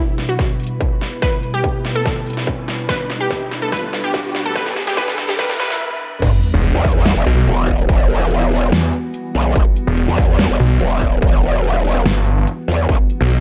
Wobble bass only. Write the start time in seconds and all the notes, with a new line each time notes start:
6.22 E1
6.75 E2
7.16 F#1
7.47 E1
7.89 E1
9.35 B1
9.56 E1
10.08 E2
10.50 F#1
10.81 E1
11.22 E1
12.68 E2
12.89 B1